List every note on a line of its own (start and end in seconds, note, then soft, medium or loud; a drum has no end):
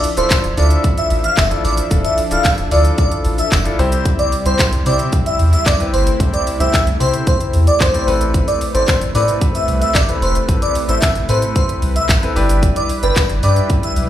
0.00 3.75 F3 medium
0.00 3.75 D4 medium
0.00 1.90 E5 medium
0.00 open hi-hat medium
0.00 shaker medium
0.17 0.26 D1 loud
0.17 0.45 D4 medium
0.17 0.45 E4 medium
0.17 0.45 F4 medium
0.17 0.45 A4 medium
0.17 0.36 C5 medium
0.17 closed hi-hat medium
0.17 shaker medium
0.30 kick loud
0.30 clap loud
0.30 closed hi-hat medium
0.30 tambourine medium
0.30 shaker medium
0.44 0.52 D1 loud
0.44 closed hi-hat medium
0.44 shaker medium
0.57 0.74 D2 loud
0.57 1.21 D4 medium
0.57 1.21 E4 medium
0.57 1.22 F4 medium
0.57 1.22 A4 medium
0.57 0.67 D5 medium
0.57 open hi-hat medium
0.57 shaker medium
0.71 closed hi-hat medium
0.71 shaker medium
0.84 kick loud
0.84 closed hi-hat medium
0.84 shaker medium
0.98 1.07 E5 medium
0.98 closed hi-hat medium
0.98 shaker medium
1.10 1.28 A1 medium
1.10 open hi-hat medium
1.10 shaker soft
1.24 1.34 F5 medium
1.24 closed hi-hat medium
1.24 shaker medium
1.37 1.54 F1 loud
1.37 1.47 E5 medium
1.37 kick loud
1.37 clap loud
1.37 closed hi-hat medium
1.37 tambourine medium
1.37 shaker medium
1.51 1.78 D4 medium
1.51 1.79 E4 medium
1.51 1.78 F4 medium
1.51 1.79 A4 medium
1.51 closed hi-hat medium
1.51 shaker medium
1.64 1.81 A1 loud
1.64 1.73 D5 medium
1.64 open hi-hat medium
1.64 shaker medium
1.77 closed hi-hat medium
1.77 shaker medium
1.91 2.08 D1 loud
1.91 2.18 D4 medium
1.91 2.18 E4 medium
1.91 2.19 F4 medium
1.91 3.77 A4 medium
1.91 2.19 A4 medium
1.91 kick loud
1.91 closed hi-hat medium
1.91 shaker medium
2.05 2.14 E5 medium
2.05 closed hi-hat medium
2.05 shaker medium
2.18 open hi-hat medium
2.18 shaker medium
2.31 2.40 D1 loud
2.31 2.59 D4 medium
2.31 2.59 E4 medium
2.31 2.59 F4 medium
2.31 2.59 A4 medium
2.31 2.50 F5 medium
2.31 closed hi-hat medium
2.31 shaker medium
2.45 kick loud
2.45 clap loud
2.45 closed hi-hat medium
2.45 tambourine medium
2.45 shaker medium
2.58 2.66 D1 loud
2.58 closed hi-hat medium
2.58 shaker medium
2.71 2.88 D2 loud
2.71 3.36 D4 medium
2.71 3.36 E4 medium
2.71 3.36 F4 medium
2.71 3.36 A4 medium
2.71 2.81 D5 medium
2.71 open hi-hat medium
2.71 shaker medium
2.85 closed hi-hat medium
2.85 shaker medium
2.98 3.08 D5 medium
2.98 kick loud
2.98 closed hi-hat medium
2.98 shaker medium
3.12 closed hi-hat medium
3.12 shaker medium
3.25 3.42 A1 loud
3.25 open hi-hat medium
3.25 shaker medium
3.38 3.48 E5 medium
3.38 closed hi-hat soft
3.38 shaker medium
3.52 3.68 F1 medium
3.52 kick loud
3.52 clap loud
3.52 closed hi-hat medium
3.52 tambourine medium
3.52 shaker medium
3.65 3.79 D4 medium
3.65 3.78 E4 medium
3.65 3.79 F4 medium
3.65 3.79 A4 loud
3.65 closed hi-hat medium
3.65 shaker medium
3.79 4.12 C2 loud
3.79 8.03 C3 medium
3.79 5.91 G3 medium
3.79 4.33 C4 loud
3.79 8.03 E4 medium
3.79 4.33 E4 loud
3.79 4.33 G4 loud
3.79 4.33 C5 loud
3.79 open hi-hat medium
3.79 shaker medium
3.92 closed hi-hat medium
3.92 shaker medium
4.05 kick loud
4.05 closed hi-hat medium
4.05 shaker medium
4.19 4.28 D5 medium
4.19 closed hi-hat medium
4.19 shaker medium
4.32 open hi-hat medium
4.32 shaker medium
4.46 4.54 C2 loud
4.46 4.73 C4 medium
4.46 4.73 E4 medium
4.46 4.73 G4 medium
4.46 4.64 C5 medium
4.46 4.73 C5 medium
4.46 closed hi-hat medium
4.46 shaker medium
4.59 kick loud
4.59 clap loud
4.59 closed hi-hat medium
4.59 tambourine medium
4.59 shaker medium
4.73 4.81 C2 loud
4.73 closed hi-hat medium
4.73 shaker medium
4.86 5.03 C3 medium
4.86 5.50 C4 medium
4.86 5.50 E4 medium
4.86 5.50 G4 medium
4.86 5.50 C5 medium
4.86 4.95 D5 medium
4.86 open hi-hat medium
4.86 shaker medium
4.99 closed hi-hat soft
4.99 shaker medium
5.13 kick loud
5.13 closed hi-hat medium
5.13 shaker medium
5.26 5.35 E5 medium
5.26 closed hi-hat medium
5.26 shaker medium
5.39 5.56 E2 medium
5.39 open hi-hat medium
5.39 shaker soft
5.53 5.62 E5 medium
5.53 closed hi-hat soft
5.53 shaker medium
5.66 5.83 C2 loud
5.66 5.76 D5 medium
5.66 kick loud
5.66 clap loud
5.66 closed hi-hat medium
5.66 tambourine medium
5.66 shaker medium
5.80 6.07 C4 medium
5.80 6.07 E4 medium
5.80 6.07 G4 medium
5.80 6.07 B4 medium
5.80 closed hi-hat medium
5.80 shaker medium
5.93 6.10 G1 loud
5.93 12.32 A3 medium
5.93 6.02 C5 medium
5.93 open hi-hat medium
5.93 shaker medium
6.07 closed hi-hat medium
6.07 shaker medium
6.20 6.37 C2 loud
6.20 6.47 C4 medium
6.20 6.47 E4 medium
6.20 6.48 G4 medium
6.20 6.48 C5 medium
6.20 kick loud
6.20 closed hi-hat medium
6.20 shaker medium
6.33 6.42 D5 medium
6.33 closed hi-hat medium
6.33 shaker medium
6.47 open hi-hat medium
6.47 shaker medium
6.60 6.68 C2 loud
6.60 6.87 C4 medium
6.60 6.87 E4 medium
6.60 6.88 G4 medium
6.60 6.88 C5 medium
6.60 6.78 E5 medium
6.60 closed hi-hat medium
6.60 shaker medium
6.74 kick loud
6.74 clap loud
6.74 closed hi-hat medium
6.74 tambourine medium
6.74 shaker medium
6.87 6.95 C2 loud
6.87 closed hi-hat medium
6.87 shaker medium
7.00 7.17 C3 medium
7.00 7.64 C4 medium
7.00 7.64 E4 medium
7.00 7.64 G4 medium
7.00 7.09 C5 medium
7.00 7.64 C5 medium
7.00 open hi-hat medium
7.00 shaker medium
7.14 closed hi-hat medium
7.14 shaker medium
7.27 7.36 C5 medium
7.27 kick loud
7.27 closed hi-hat medium
7.27 shaker medium
7.41 closed hi-hat medium
7.41 shaker medium
7.54 7.70 E2 medium
7.54 open hi-hat medium
7.54 shaker soft
7.67 7.76 D5 medium
7.67 closed hi-hat medium
7.67 shaker medium
7.80 7.97 C2 loud
7.80 8.18 C5 medium
7.80 kick loud
7.80 clap loud
7.80 closed hi-hat medium
7.80 tambourine medium
7.80 shaker medium
7.94 8.06 C4 medium
7.94 8.06 E4 medium
7.94 8.07 G4 medium
7.94 8.08 D5 medium
7.94 closed hi-hat medium
7.94 shaker medium
8.07 8.41 A1 loud
8.07 12.32 C3 medium
8.07 8.61 C4 medium
8.07 8.61 E4 medium
8.07 8.61 A4 medium
8.07 8.61 B4 medium
8.07 12.32 B4 medium
8.07 open hi-hat medium
8.07 shaker medium
8.21 closed hi-hat medium
8.21 shaker medium
8.34 kick loud
8.34 closed hi-hat medium
8.34 shaker medium
8.48 8.57 D5 medium
8.48 closed hi-hat medium
8.48 shaker medium
8.61 open hi-hat medium
8.61 shaker medium
8.74 8.83 A1 loud
8.74 9.02 C4 medium
8.74 9.02 E4 medium
8.74 9.02 A4 medium
8.74 8.93 C5 medium
8.74 9.02 D5 medium
8.74 closed hi-hat medium
8.74 shaker medium
8.88 kick loud
8.88 clap loud
8.88 closed hi-hat medium
8.88 tambourine medium
8.88 shaker medium
9.01 9.10 A1 loud
9.01 closed hi-hat medium
9.01 shaker medium
9.15 9.31 A2 loud
9.15 9.79 C4 medium
9.15 9.79 E4 medium
9.15 9.79 A4 medium
9.15 9.79 B4 medium
9.15 9.24 D5 medium
9.15 open hi-hat medium
9.15 shaker medium
9.28 closed hi-hat medium
9.28 shaker medium
9.41 kick loud
9.41 closed hi-hat medium
9.41 shaker medium
9.55 9.64 E5 medium
9.55 closed hi-hat medium
9.55 shaker medium
9.68 9.85 C2 loud
9.68 open hi-hat medium
9.68 shaker soft
9.82 9.91 E5 medium
9.82 closed hi-hat medium
9.82 shaker medium
9.95 10.11 A1 medium
9.95 10.04 D5 medium
9.95 kick loud
9.95 clap loud
9.95 closed hi-hat medium
9.95 tambourine medium
9.95 shaker medium
10.08 10.36 C4 medium
10.08 10.36 E4 medium
10.08 10.36 A4 medium
10.08 10.36 B4 medium
10.08 closed hi-hat medium
10.08 shaker medium
10.22 10.38 E1 loud
10.22 10.31 C5 medium
10.22 open hi-hat medium
10.22 shaker medium
10.35 closed hi-hat medium
10.35 shaker medium
10.49 10.65 A1 loud
10.49 10.76 C4 medium
10.49 10.76 E4 medium
10.49 10.76 A4 medium
10.49 10.76 B4 medium
10.49 kick loud
10.49 closed hi-hat medium
10.49 shaker medium
10.62 10.71 D5 medium
10.62 closed hi-hat medium
10.62 shaker medium
10.75 open hi-hat medium
10.75 shaker medium
10.89 10.97 A1 medium
10.89 11.16 C4 medium
10.89 11.16 E4 medium
10.89 11.16 A4 medium
10.89 11.16 C5 medium
10.89 11.07 E5 medium
10.89 closed hi-hat medium
10.89 shaker medium
11.02 kick loud
11.02 clap loud
11.02 closed hi-hat medium
11.02 tambourine medium
11.02 shaker medium
11.15 11.24 A1 loud
11.15 closed hi-hat medium
11.15 shaker medium
11.29 11.46 A2 loud
11.29 11.93 C4 medium
11.29 11.93 E4 medium
11.29 11.93 A4 medium
11.29 11.93 B4 medium
11.29 11.38 C5 medium
11.29 open hi-hat medium
11.29 shaker medium
11.42 closed hi-hat medium
11.42 shaker medium
11.56 11.65 C5 medium
11.56 kick loud
11.56 closed hi-hat medium
11.56 shaker medium
11.69 closed hi-hat medium
11.69 shaker medium
11.82 11.99 C2 loud
11.82 open hi-hat medium
11.82 shaker soft
11.96 12.05 E5 medium
11.96 closed hi-hat medium
11.96 shaker medium
12.09 12.26 A1 loud
12.09 kick loud
12.09 clap loud
12.09 closed hi-hat medium
12.09 tambourine medium
12.09 shaker medium
12.22 12.36 C4 medium
12.22 12.34 E4 medium
12.22 12.36 A4 medium
12.22 12.35 B4 loud
12.22 closed hi-hat medium
12.22 shaker medium
12.36 12.69 G1 loud
12.36 14.09 G3 medium
12.36 12.89 D4 loud
12.36 12.90 E4 loud
12.36 14.09 E4 medium
12.36 12.90 G4 medium
12.36 14.09 B4 medium
12.36 12.90 B4 loud
12.36 open hi-hat medium
12.36 shaker medium
12.49 closed hi-hat medium
12.49 shaker medium
12.63 kick loud
12.63 closed hi-hat medium
12.63 shaker medium
12.76 12.85 D5 medium
12.76 closed hi-hat medium
12.76 shaker medium
12.89 open hi-hat medium
12.89 shaker medium
13.03 13.11 G1 loud
13.03 13.30 D4 medium
13.03 13.30 E4 medium
13.03 13.31 G4 medium
13.03 13.21 B4 medium
13.03 13.31 D5 medium
13.03 closed hi-hat medium
13.03 shaker medium
13.16 kick loud
13.16 clap loud
13.16 closed hi-hat medium
13.16 tambourine medium
13.16 shaker medium
13.30 13.38 G1 loud
13.30 closed hi-hat medium
13.30 shaker medium
13.43 13.60 G2 loud
13.43 14.07 D4 medium
13.43 14.07 E4 medium
13.43 14.07 G4 medium
13.43 14.07 B4 medium
13.43 13.52 D5 medium
13.43 open hi-hat medium
13.43 shaker medium
13.56 closed hi-hat soft
13.56 shaker medium
13.70 kick loud
13.70 closed hi-hat medium
13.70 shaker medium
13.83 13.93 E5 medium
13.83 closed hi-hat medium
13.83 shaker medium
13.96 14.09 B1 medium
13.96 open hi-hat medium
13.96 shaker medium